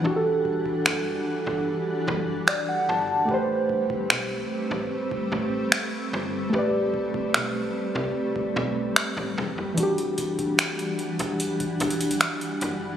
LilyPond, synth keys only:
\new Staff \with { instrumentName = "Synth keys" } { \time 4/4 \key e \minor \tempo 4 = 74 << { r2. d''16 fis''16 a''8 | r1 | r1 | r1 | } \\ { <e d' fis' g' a'>1 | <a g' b' c''>1 | <a g' b' d''>1 | <e d' fis' g'>1 | } >> }